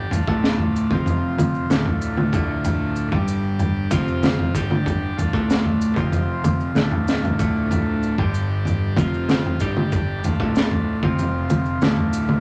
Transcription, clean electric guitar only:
0.00 0.11 G2 medium
0.00 0.11 D3 medium
0.00 0.11 G3 loud
0.13 0.27 D2 medium
0.13 0.27 A2 medium
0.28 0.90 D2 medium
0.28 0.90 A2 medium
0.28 0.91 D3 loud
0.92 1.69 F2 medium
0.92 1.70 C3 medium
0.92 1.70 F3 loud
1.70 2.32 D2 medium
1.70 2.32 A2 medium
1.70 2.33 D3 medium
2.34 3.12 D2 medium
2.34 3.12 A2 loud
2.34 3.12 D3 loud
3.12 3.90 G2 medium
3.12 3.91 D3 medium
3.12 3.91 G3 medium
3.92 4.54 F2 medium
3.92 4.54 C3 medium
3.92 4.54 F3 loud
4.55 5.17 G2 medium
4.55 5.17 D3 medium
4.55 5.17 G3 medium
5.18 5.32 D2 medium
5.18 5.33 A2 medium
5.34 5.96 D2 medium
5.34 5.96 A2 medium
5.34 5.96 D3 medium
5.96 6.75 F2 medium
5.96 6.75 C3 medium
5.96 6.75 F3 medium
6.76 7.38 D2 medium
6.76 7.38 A2 medium
6.76 7.38 D3 medium
7.40 8.17 D2 medium
7.40 8.17 A2 medium
7.40 8.18 D3 medium
8.18 8.96 G2 medium
8.18 8.97 D3 medium
8.18 8.97 G3 medium
8.98 9.60 F2 medium
8.98 9.60 C3 medium
8.98 9.60 F3 medium
9.60 10.23 G2 medium
9.60 10.23 D3 medium
9.60 10.23 G3 loud
10.24 10.39 D2 medium
10.24 10.39 A2 medium
10.40 11.02 D2 medium
10.40 11.02 A2 medium
10.40 11.02 D3 loud
11.03 11.81 F2 medium
11.03 11.81 C3 medium
11.03 11.81 F3 loud
11.82 12.40 D2 medium
11.82 12.40 A2 medium
11.82 12.40 D3 medium

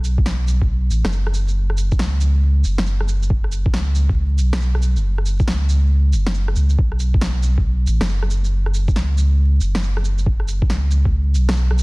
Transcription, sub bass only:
0.00 0.90 B1 loud
0.91 1.03 A1 medium
1.04 2.00 F#1 loud
1.99 2.64 C#2 medium
2.65 3.75 F#1 medium
3.73 4.40 C#2 loud
4.38 4.98 B1 medium
4.96 5.49 F#1 medium
5.48 6.14 C#2 loud
6.13 6.56 F#1 loud
6.56 6.77 C#2 medium
6.79 7.86 B1 medium
7.87 8.00 A1 loud
8.00 8.97 F#1 loud
8.95 9.60 C#2 medium
9.61 10.71 F#1 medium
10.70 11.37 C#2 loud
11.35 11.83 B1 medium

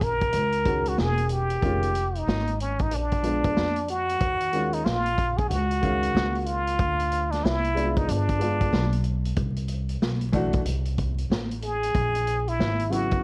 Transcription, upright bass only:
0.00 0.30 A#1 medium
0.34 0.95 C#2 medium
0.98 1.59 E1 medium
1.63 2.24 F1 medium
2.27 2.92 G#1 medium
2.92 3.53 A#1 loud
3.57 4.18 F2 medium
4.21 4.82 D#2 medium
4.86 5.47 A#1 medium
5.50 6.11 C#2 medium
6.14 6.76 C#2 loud
6.79 7.40 D2 medium
7.44 8.05 C2 medium
8.08 8.70 G1 loud
8.73 9.34 B1 loud
9.37 9.98 C2 medium
10.02 10.63 B1 medium
10.65 11.27 C2 medium
11.30 11.92 A1 medium
11.95 12.56 A#1 loud
12.59 13.09 G#1 medium
13.12 muted upright bass stroke soft

